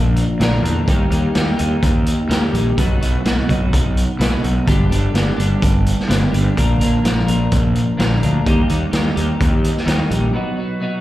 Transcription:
Already playing: A#1 F3 A#3 D4 A#4
0.16 closed hi-hat
0.39 A#1 A#2 D3 F3 A#3 D4 A#4, snare, closed hi-hat
0.63 E2 F3 A#3 D4 A#4, closed hi-hat
0.86 D#2 D#3 G3 A#3 D#4 G4, kick, closed hi-hat
1.10 D#2 A#3 D#4 G4, closed hi-hat
1.34 D#2 G3 A#3 D#4 G4, snare, closed hi-hat
1.57 D#2 A#3 D#4 G4, closed hi-hat
1.83 D#2, kick, closed hi-hat
2.06 closed hi-hat
2.28 D#2 D#3 G3 A#3 D#4 G4, snare, closed hi-hat
2.52 A#1 A#3 D#4 G4, closed hi-hat
2.77 B1 B2 F#3 B3 D#4 F#4, kick, closed hi-hat
3.01 B1 B3 D#4 F#4, closed hi-hat
3.25 B1 F#3 B3 D#4 F#4, snare, closed hi-hat
3.48 B1 B3 D#4 F#4, kick, closed hi-hat
3.73 B1, kick, closed hi-hat
3.97 closed hi-hat
4.19 B1 B2 F#3 B3 D#4 F#4, snare, closed hi-hat
4.42 B1 B3 D#4 F#4, closed hi-hat
4.66 G1 G2 D3 G3 B3 D4 G4, kick, closed hi-hat
4.90 G1 G3 B3 D4 G4, closed hi-hat
5.13 G1 G3 B3 D4 G4, snare, closed hi-hat
5.37 G1 G3 B3 D4 G4, closed hi-hat
5.62 G1, kick, closed hi-hat
5.86 closed hi-hat
5.99 snare
6.07 G1 G2 D3 G3 B3 D4 G4, snare, closed hi-hat
6.32 G1 G3 B3 D4 G4, closed hi-hat
6.56 A#1 A#2 D3 F3 A#3 D4 A#4, kick, closed hi-hat
6.80 A#1 F3 A#3 D4 A#4, closed hi-hat
7.03 A#1 F3 A#3 D4 A#4, snare, closed hi-hat
7.27 A#1 F3 A#3 D4 A#4, closed hi-hat
7.52 A#1, kick, closed hi-hat
7.75 closed hi-hat
7.98 A#1 A#2 D3 F3 A#3 D4 A#4, snare, closed hi-hat
8.21 D2 F3 A#3 D4 A#4, closed hi-hat
8.45 D#2 D#3 G3 A#3 D#4 G4, kick, closed hi-hat
8.69 D#2 A#3 D#4 G4, closed hi-hat
8.92 D#2 G3 A#3 D#4 G4, snare, closed hi-hat
9.16 D#2 A#3 D#4 G4, closed hi-hat
9.41 D#2, kick, closed hi-hat
9.64 closed hi-hat
9.77 snare
9.86 D#2 D#3 G3 A#3 D#4 G4, snare, closed hi-hat
10.10 A#1 A#3 D#4 G4, closed hi-hat
10.33 B2 F#3 B3 D#4 F#4
10.56 B3 D#4 F#4
10.80 F#3 B3 D#4 F#4

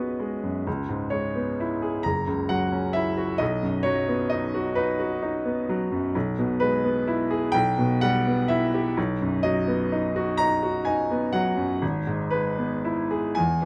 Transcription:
Already playing: B1 F#2 G#3 B3 F#4 G#4 B4 C#5 D#5
0.19 G#3
0.43 F#2
0.67 C#2
0.89 G#2
1.10 G#3 C#5
1.36 B3
1.60 E4
1.82 G#4
2.03 F#1 A#5
2.27 C#2
2.49 F#3 F#5
2.72 C#4
2.93 E4 E5
3.17 F#4
3.38 B1 D#5
3.63 F#2
3.83 F#3 C#5
4.08 B3
4.30 D#4 D#5
4.54 F#4
4.75 D#4 B4
5.00 F#4
5.22 D#4
5.45 B3
5.69 F#3
5.91 F#2
6.15 B1
6.39 B2
6.60 G#3 B4
6.84 B3
7.08 E4
7.31 G#4
7.52 B1 G5
7.78 B2
8.01 G3 F#5
8.27 B3
8.48 E4 E5
8.74 G4
8.97 B1
9.22 F#2
9.43 F#3 D#5
9.68 B3
9.92 D#4
10.16 F#4
10.38 D#4 A#5
10.63 F#4
10.85 D#4 G#5
11.11 B3
11.33 F#3 F#5
11.57 F#2
11.82 G#1
12.07 G#2
12.31 G#3 B4
12.58 B3
12.85 E4
13.11 G#4
13.35 E2 G#5
13.62 E3

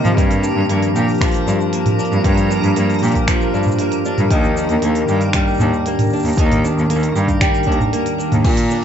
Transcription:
Already playing: C3 D#3 G3 A#3 C4 D#4 G4 A#4
0.04 F3, mid tom, open hi-hat, shaker
0.17 G2 F3, kick, open hi-hat, shaker
0.31 D4, open hi-hat, shaker
0.43 D4, shaker
0.55 G2
0.68 G2 A#3, open hi-hat, shaker
0.82 open hi-hat, shaker
0.95 A#2 G4, shaker
1.08 open hi-hat, shaker
1.11 open hi-hat
1.14 open hi-hat
1.18 finger snap, kick, open hi-hat
1.21 F3, open hi-hat, shaker
1.28 open hi-hat
1.31 open hi-hat
1.34 open hi-hat, shaker
1.46 G2 D4, shaker
1.61 shaker
1.73 A#3, open hi-hat, shaker
1.86 mid tom, open hi-hat, shaker
1.99 D4, shaker
2.05 open hi-hat
2.12 G2, shaker
2.24 G2, kick, open hi-hat, shaker
2.37 open hi-hat, shaker
2.50 D4, shaker
2.63 G2, open hi-hat, shaker
2.76 G2 A#3, open hi-hat, shaker
2.90 open hi-hat, shaker
2.94 open hi-hat
2.99 A#2 G4, open hi-hat
3.03 open hi-hat, shaker
3.07 open hi-hat
3.12 kick, open hi-hat
3.15 open hi-hat, shaker
3.27 F3, finger snap, kick, open hi-hat, shaker
3.41 shaker
3.53 G2 D4, shaker
3.63 mid tom, shaker
3.67 shaker
3.71 shaker
3.79 A#3, open hi-hat, shaker
3.92 open hi-hat, shaker
4.05 D4, shaker
4.18 G2, mid tom, open hi-hat, shaker
4.31 D#2 D#3, kick, open hi-hat, shaker
4.44 shaker
4.57 D4, shaker
4.69 D#2, open hi-hat, shaker
4.82 D#2 A#3, open hi-hat, shaker
4.95 open hi-hat, shaker
5.08 G2 G4, shaker
5.21 open hi-hat, shaker
5.33 G3, finger snap, kick, open hi-hat, shaker
5.47 shaker
5.50 shaker
5.54 shaker
5.57 D#2, mid tom, shaker
5.60 D4, shaker
5.74 shaker
5.86 A#3, open hi-hat, shaker
5.99 mid tom, open hi-hat, shaker
6.03 shaker
6.06 shaker
6.10 shaker
6.13 D4, shaker
6.16 shaker
6.19 shaker
6.22 D#2, open hi-hat, shaker
6.26 open hi-hat, shaker
6.29 open hi-hat, shaker
6.32 open hi-hat, shaker
6.35 D#2 D#3, kick, open hi-hat, shaker
6.41 open hi-hat
6.45 open hi-hat
6.48 mid tom, open hi-hat
6.51 open hi-hat, shaker
6.64 D4, shaker
6.76 D#2, shaker
6.90 D#2 A#3, open hi-hat, shaker
6.93 shaker
6.96 shaker
6.99 shaker
7.01 open hi-hat, shaker
7.04 shaker
7.15 G2 G4, shaker
7.28 kick, open hi-hat, shaker
7.41 G3, finger snap, kick, open hi-hat, shaker
7.54 open hi-hat, shaker
7.63 D#2, kick, open hi-hat
7.67 D4
7.72 open hi-hat
7.80 mid tom, shaker
7.93 A#3, open hi-hat, shaker
8.06 open hi-hat, shaker
8.18 D4, shaker
8.32 D#2, mid tom, open hi-hat, shaker
8.44 A#2 D3 A4 A5, kick, crash, shaker
8.57 open hi-hat, shaker
8.71 D4, shaker
8.79 A#3

